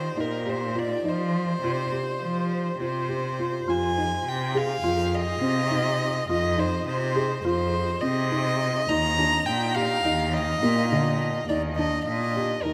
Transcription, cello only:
Already playing: D#3
0.19 A#2
1.05 F3
1.63 C3
2.21 F3
2.80 C3
3.68 F2
4.26 C3
4.83 F2
5.42 C3
6.30 F2
6.88 C3
7.45 F2
8.04 C3
8.91 D#2
9.48 A#2
10.06 D#2
10.63 A#2
11.49 D#2
12.08 A#2
12.66 D#2

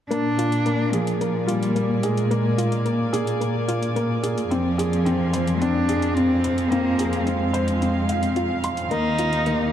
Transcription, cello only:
0.10 D4
0.92 F3
1.46 G3
2.02 G#3
4.50 F3
5.61 D4
6.15 C4
6.70 A#3
7.19 A#3
7.25 G#3
8.91 D#4

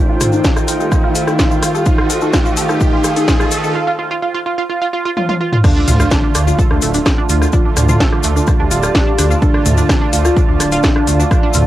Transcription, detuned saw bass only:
5.88 D2
6.35 D2
6.71 D2
6.82 D1
7.30 D2
7.77 D2
8.24 D2
8.60 D2
8.71 D1
9.18 D2
9.66 D2
10.13 D2
10.49 D2
10.60 D1
11.07 D2
11.55 D2

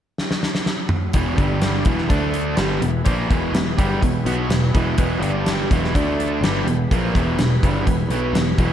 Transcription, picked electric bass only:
1.14 E1
1.38 G1
1.86 E1
2.10 D2
2.58 G1
2.82 E1
3.06 A#1
3.30 E1
3.54 E1
3.79 G1
4.02 E1
4.25 B1
4.50 E1
4.75 E1
4.98 E1
5.20 G1
5.71 E1
5.95 D2
6.41 G1
6.65 E1
6.92 A#1
7.16 E1
7.37 E1
7.63 G1
7.87 E1
8.09 B1
8.33 E1
8.58 E1

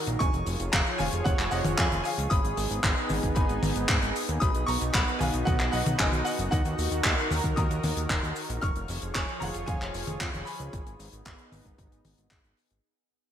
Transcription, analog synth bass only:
0.07 A#1
0.20 F1
0.34 F1
0.47 F1
0.60 F1
0.73 F1
0.99 F1
1.13 F1
1.26 F1
1.39 F1
1.52 F1
1.65 F1
1.78 F2
1.92 F1
2.18 C#2
2.31 G#1
2.44 G#1
2.57 G#1
2.71 G#1
2.84 G#1
3.10 G#1
3.23 G#1
3.36 G#1
3.50 G#1
3.63 G#1
3.76 G#1
3.89 G#2
4.02 G#1
4.29 D#2
4.42 B1
4.55 B1
4.68 B1
4.81 B1
4.94 B1
5.21 B1
5.34 B1
5.47 B1
5.60 B1
5.73 B1
5.86 B1
6.00 F#1
6.13 B1
6.39 F#1
6.52 D#2
6.65 D#2
6.78 D#2
6.91 D#2
7.05 D#2
7.31 D#2
7.44 D#2
7.57 D#2
7.70 D#2
7.84 D#2
7.97 D#2
8.10 D#1
8.23 D#2
8.49 A#1
8.63 F1
8.76 F1
8.89 F1
9.02 F1
9.15 F1
9.42 F1
9.55 F1
9.68 F1
9.81 F1
9.94 F1
10.07 F1
10.21 F2
10.33 F1
10.60 C#2
10.73 G#1
10.86 G#1
10.99 G#1
11.13 G#1
11.26 G#1
11.52 G#1
11.65 G#1
11.79 G#1
11.92 G#1
12.05 G#1
12.18 G#1
12.31 G#1
12.44 G#1
12.71 G#1

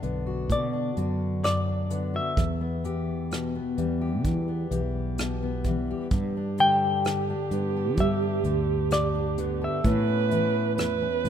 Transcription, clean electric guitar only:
Already playing: F#5
0.52 D5
1.44 D5
2.16 E5
6.60 G5
8.00 E5
8.93 D5
9.64 E5

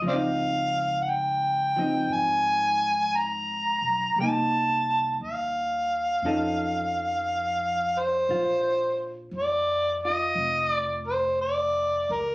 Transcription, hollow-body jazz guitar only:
0.02 F3
0.08 C4
0.13 D#4
1.76 F3 C4 D#4
4.18 G3 A#3
4.23 D#4
6.25 F3 C#4 D#4 A4
8.31 F4
10.05 F4

